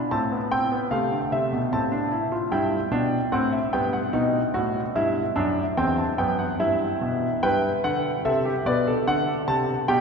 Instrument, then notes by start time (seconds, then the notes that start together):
grand piano
Already playing: D4
0.11 A2 C4 A5
0.32 B3
0.51 C4 G5
0.72 B3
0.91 C3 A3 F5
1.12 D3
1.32 C3 E5
1.53 B2
1.73 A2 C4 A5
1.92 D4
2.12 E4
2.32 F4
2.52 G2 E4 G5
2.91 B2 D4
3.32 A2 C4 F#5
3.52 E5
3.73 G2 B3 G5
3.93 F#5
4.13 B2 D#4
4.54 A2 F#4
4.96 G2 E4 E5
5.36 F#2 D4
5.77 E2 C4 G5
5.98 A5
6.18 F#2 B3 G5
6.39 F#5
6.60 G2 E4 E5
7.01 B2
7.43 G2 B4 G5
7.84 D3 F#5
8.25 C3 A4 E5
8.45 G4
8.66 B2 B4 D5
8.87 A4
9.07 D3 F#5
9.48 C3 A5
9.88 B2 G4 G5